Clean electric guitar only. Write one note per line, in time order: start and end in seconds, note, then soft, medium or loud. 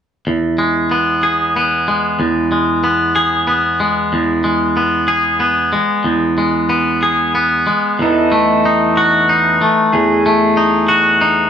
0.27 2.19 E2 soft
0.58 1.88 G#3 soft
0.91 1.56 B3 soft
1.23 3.15 G#4 soft
1.56 2.83 B3 soft
1.88 2.51 G#3 soft
2.20 4.12 E2 soft
2.52 3.80 G#3 soft
2.84 3.47 B3 soft
3.16 5.08 G#4 soft
3.47 4.76 B3 soft
3.80 4.43 G#3 soft
4.13 5.74 E2 soft
4.44 5.71 G#3 soft
4.77 5.40 B3 soft
5.08 6.70 G#4 soft
5.40 6.69 B3 soft
5.73 6.37 G#3 soft
6.04 7.67 E2 soft
6.38 7.65 G#3 soft
6.69 7.34 B3 soft
7.03 8.00 G#4 soft
7.35 8.35 B3 soft
7.67 8.00 G#3 soft
7.99 9.61 E2 soft
8.32 9.61 A3 soft
8.65 9.28 D#4 soft
8.97 10.59 F#4 soft
9.29 10.56 D#4 soft
9.61 10.26 A3 soft
9.94 11.50 E2 soft
10.26 11.50 A3 soft
10.57 11.20 D#4 soft
10.88 11.50 F#4 soft
11.21 11.50 D#4 soft